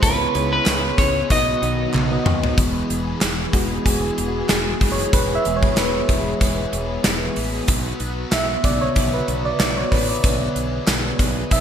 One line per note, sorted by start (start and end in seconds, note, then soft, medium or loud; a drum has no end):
0.00 0.26 C#2 loud
0.00 1.29 C#3 medium
0.00 0.95 C#3 medium
0.00 1.27 G#3 medium
0.00 1.30 G#3 medium
0.00 0.29 B3 medium
0.00 2.56 B3 medium
0.00 0.29 E4 medium
0.00 1.30 E4 medium
0.00 0.30 G#4 medium
0.00 0.51 B4 medium
0.00 0.30 C#5 medium
0.00 kick loud
0.00 closed hi-hat medium
0.04 1.30 C#3 medium
0.04 1.31 C#4 medium
0.35 0.58 C#2 medium
0.35 0.61 B3 medium
0.35 0.61 E4 medium
0.35 0.62 G#4 medium
0.35 0.62 C#5 medium
0.35 closed hi-hat medium
0.53 0.96 B4 medium
0.66 0.89 C#2 loud
0.66 1.20 B3 medium
0.66 1.20 E4 medium
0.66 1.20 G#4 medium
0.66 1.21 C#5 medium
0.66 snare loud
0.66 clap medium
0.66 closed hi-hat medium
0.66 tambourine medium
0.98 1.21 C#2 medium
0.98 1.31 C#5 medium
0.98 kick medium
0.98 closed hi-hat medium
1.29 1.53 B1 loud
1.29 1.92 B2 medium
1.29 2.23 B2 medium
1.29 2.57 D#3 medium
1.29 1.93 F#3 medium
1.29 2.57 F#3 medium
1.29 1.57 B3 medium
1.29 1.94 B3 medium
1.29 1.57 D#4 medium
1.29 1.57 F#4 medium
1.29 2.57 F#4 medium
1.29 2.23 D#5 loud
1.29 1.58 D#5 medium
1.29 kick medium
1.29 closed hi-hat medium
1.62 1.85 B1 loud
1.62 2.02 B3 medium
1.62 2.02 D#4 medium
1.62 2.03 F#4 medium
1.62 2.03 D#5 medium
1.62 closed hi-hat medium
1.93 2.17 B1 loud
1.93 2.57 B2 medium
1.93 2.58 F#3 medium
1.93 5.45 B3 medium
1.93 clap medium
1.93 high tom medium
2.11 2.50 B3 medium
2.11 2.50 D#4 medium
2.11 2.50 F#4 medium
2.11 2.51 D#5 medium
2.25 2.49 D#2 loud
2.25 mid tom medium
2.44 floor tom medium
2.57 2.81 E1 medium
2.57 3.83 E2 medium
2.57 3.85 B2 medium
2.57 3.52 E3 medium
2.57 7.65 E3 medium
2.57 3.86 E3 medium
2.57 3.53 G#3 soft
2.57 7.65 G#3 medium
2.57 11.61 B3 medium
2.57 3.53 B3 medium
2.57 7.65 G#4 medium
2.57 kick loud
2.57 closed hi-hat medium
2.90 3.13 E1 medium
2.90 closed hi-hat medium
3.21 3.45 E1 medium
3.21 snare loud
3.21 clap medium
3.21 closed hi-hat medium
3.53 3.77 E1 medium
3.53 3.82 E3 soft
3.53 3.83 G#3 soft
3.53 3.83 B3 soft
3.53 3.68 F#4 medium
3.53 kick medium
3.53 closed hi-hat medium
3.85 4.09 E1 medium
3.85 4.81 E2 medium
3.85 4.81 B2 medium
3.85 4.80 E3 medium
3.85 4.30 G#4 medium
3.85 kick medium
3.85 closed hi-hat medium
4.18 4.41 E1 loud
4.18 closed hi-hat medium
4.28 4.50 F#4 medium
4.49 4.73 E1 medium
4.49 4.93 G#4 medium
4.49 snare loud
4.49 clap medium
4.49 closed hi-hat medium
4.81 5.04 F#1 loud
4.81 5.12 B2 soft
4.81 5.13 E3 medium
4.81 kick medium
4.81 open hi-hat medium
4.92 5.14 C#5 medium
4.99 closed hi-hat medium
5.12 5.36 E1 loud
5.12 6.39 E2 medium
5.12 6.40 B2 medium
5.12 6.41 E3 medium
5.12 5.35 B4 loud
5.12 kick loud
5.12 closed hi-hat medium
5.35 5.57 E5 loud
5.45 5.69 E1 medium
5.45 5.89 E3 medium
5.45 5.89 G#3 medium
5.45 5.90 B3 medium
5.45 closed hi-hat medium
5.56 5.78 C#5 medium
5.63 kick medium
5.77 6.00 E1 loud
5.77 6.07 B4 medium
5.77 snare loud
5.77 clap medium
5.77 closed hi-hat medium
6.09 6.32 E1 medium
6.09 kick medium
6.09 closed hi-hat medium
6.40 6.64 E1 medium
6.40 7.37 E2 medium
6.40 7.37 B2 medium
6.40 7.35 E3 medium
6.40 kick medium
6.40 closed hi-hat medium
6.73 6.96 E1 medium
6.73 closed hi-hat medium
7.04 7.28 E1 loud
7.04 snare loud
7.04 clap medium
7.04 closed hi-hat medium
7.36 7.60 A1 medium
7.36 7.67 B2 soft
7.36 7.68 E3 medium
7.36 open hi-hat medium
7.68 7.91 B1 loud
7.68 8.94 B2 medium
7.68 11.61 B2 medium
7.68 8.95 F#3 medium
7.68 8.97 B3 medium
7.68 10.22 F#4 medium
7.68 kick loud
7.68 closed hi-hat medium
8.00 8.23 B1 medium
8.00 closed hi-hat medium
8.32 8.55 B1 loud
8.32 8.66 E5 loud
8.32 snare loud
8.32 clap medium
8.32 closed hi-hat medium
8.64 8.87 B1 loud
8.64 11.16 C#3 medium
8.64 10.22 D3 medium
8.64 10.23 B3 soft
8.64 8.83 D5 medium
8.64 kick medium
8.64 closed hi-hat medium
8.81 9.15 C#5 medium
8.96 9.19 B1 loud
8.96 9.92 B2 medium
8.96 9.92 F#3 medium
8.96 9.91 B3 medium
8.96 kick medium
8.96 closed hi-hat medium
9.14 9.47 B4 medium
9.28 9.51 B1 loud
9.28 closed hi-hat medium
9.45 9.58 D5 medium
9.60 9.83 B1 loud
9.60 9.76 D5 medium
9.60 snare loud
9.60 clap medium
9.60 closed hi-hat medium
9.77 9.92 C#5 medium
9.91 10.15 A1 medium
9.91 10.24 F#3 soft
9.91 10.24 B3 medium
9.91 10.08 B4 medium
9.91 kick medium
9.91 open hi-hat medium
10.09 10.69 D5 medium
10.23 10.47 B1 loud
10.23 11.49 B2 medium
10.23 11.16 D3 medium
10.23 11.50 F#3 medium
10.23 11.16 B3 soft
10.23 11.52 B3 medium
10.23 11.61 G#4 medium
10.23 10.53 C#5 medium
10.23 kick loud
10.23 closed hi-hat medium
10.55 10.79 B1 medium
10.55 closed hi-hat medium
10.87 11.10 B1 medium
10.87 snare loud
10.87 clap medium
10.87 closed hi-hat medium
11.19 11.42 B1 loud
11.19 kick medium
11.19 closed hi-hat medium
11.51 11.61 B1 loud
11.51 11.61 B2 medium
11.51 11.61 F#3 medium
11.51 11.61 B3 medium
11.51 11.61 E5 medium
11.51 kick medium
11.51 closed hi-hat medium